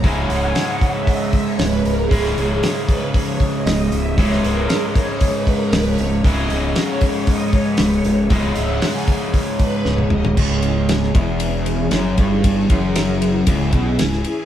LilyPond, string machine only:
\new Staff \with { instrumentName = "String machine" } { \time 4/4 \key cis \minor \tempo 4 = 116 \tuplet 3/2 { gis''8 fis''8 gis''8 fis''4 e''8 dis''8 e''8 cis''8 b'8 ais'8 gis'8~ } | gis'4~ gis'16 r16 b'8 cis''8. dis''8. e''8 | cis''16 b'16 ais'8 gis'16 dis''16 cis''8. b'16 ais'8 b'16 cis''8 r16 | dis''4 cis''4 \tuplet 3/2 { dis''8 cis''8 b'8 } cis''4 |
\tuplet 3/2 { dis''8 e''8 fis''8 } gis''8 r4 b'8 \tuplet 3/2 { cis''8 dis''4 } | <e cis' gis'>1~ | <e cis' gis'>1 | }